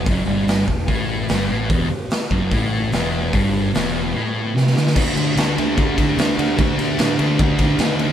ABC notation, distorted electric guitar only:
X:1
M:4/4
L:1/8
Q:1/4=148
K:Dmix
V:1 name="Distorted electric guitar"
F,, G,,2 E,, A,,2 G,, A,, | E,, z2 F,, A,,2 E,,2 | G,,2 E,,2 A,,2 C, D, | [D,A,D] [A,D] [D,A,D] [D,A,D] [D,A,D] [A,D] [D,A,D] [A,D] |
[D,A,D] [A,D] [D,A,D] [D,A,D] [D,A,D] [A,D] [D,A,D] [A,D] |]